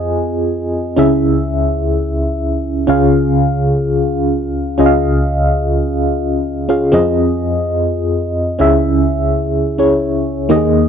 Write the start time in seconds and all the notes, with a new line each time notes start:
Already playing: F2 C4 F4 G#4 D#5 G#5
0.97 C#2 C#3 C#4 E4 G#4 E5
2.87 C#2 C#3 C#4 F4 G#4 F5
4.78 C#2 C#3 C#4 F4 G#4 D#5
4.86 F5
6.69 C#4 F4 G#4 F5
6.92 F2 C4 F4 G#4 D#5
8.59 C#2 C#3 C#4 E4 G#4 E5
9.78 C#4 E4 G#4 C#5
10.49 D#2 D#3 A#3 D#4 G4 D#5
10.56 G#4